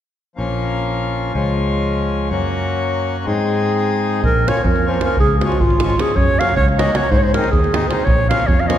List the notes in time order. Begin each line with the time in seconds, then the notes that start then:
0.36 A#1 F3 A#3 C#4 F4
1.32 C#2 F3 G#3 C#4 F4
2.29 F#2 F#3 A#3 C#4 F#4
3.25 G#2 G#3 C4 D#4 G#4
4.23 A#1 A#4, davul low
4.47 F3 A#3 C#4 F4 C#5, davul high
4.57 davul high
4.63 F2 A#4 C5, davul low
4.76 davul high
4.85 F3 A#3 C#4 F4 C5
4.94 davul high
5.01 F3 A#3 C#4 F4 A#4, davul high
5.17 C#2 G#4, davul low
5.38 G#4, davul high
5.43 F3 G#3 C#4 F4 F#4
5.52 davul high
5.60 G#1 F4, davul low
5.70 davul high
5.80 F3 G#3 C#4 F4, davul high
5.90 davul high
5.98 F3 G#3 C#4 F4 G#4, davul high
6.16 F#2 C#5, davul low
6.39 F#3 A#3 C#4 F#4 F5, davul high
6.49 davul high
6.56 C#2 C#5, davul low
6.68 davul high
6.77 F#3 A#3 C#4 F#4 D#5, davul high
6.88 davul high
6.94 F#3 A#3 C#4 F#4 C#5, davul high
7.11 G#2 C5, davul low
7.18 C#5
7.23 C5, davul high
7.34 D#3 G#3 C4 D#4 A#4, davul high
7.44 davul high
7.51 D#2 G#4, davul low
7.64 davul high
7.72 D#3 G#3 C4 D#4, davul high
7.82 davul high
7.88 D#3 G#3 C4 D#4 C5, davul high
8.05 A#1 C#5, davul low
8.29 F3 A#3 C#4 F4 F5, davul high
8.40 davul high
8.47 F2 C#5, davul low
8.60 F5, davul high
8.67 F3 A#3 C#4 F4 D#5, davul high